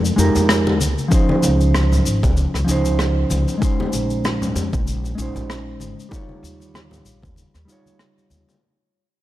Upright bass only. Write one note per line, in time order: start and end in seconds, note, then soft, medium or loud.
0.00 0.12 F2 medium
0.18 0.30 F2 medium
0.36 0.81 F2 medium
0.81 0.93 C#2 medium
1.43 1.99 C#2 loud
2.05 2.25 G#1 medium
2.23 2.44 C#2 medium
2.54 2.64 C#2 medium
2.68 3.24 C#2 medium
3.31 3.43 C#2 medium
3.93 4.49 A#1 medium
4.56 4.75 F2 medium
4.73 5.12 A#1 medium
5.18 5.30 A#1 medium
5.36 5.81 A#1 medium
5.81 5.93 G#1 medium
6.43 6.99 D#2 medium
7.05 7.25 A#1 medium
7.23 7.44 D#2 medium
7.55 7.64 D#2 medium
8.31 8.43 D#2 medium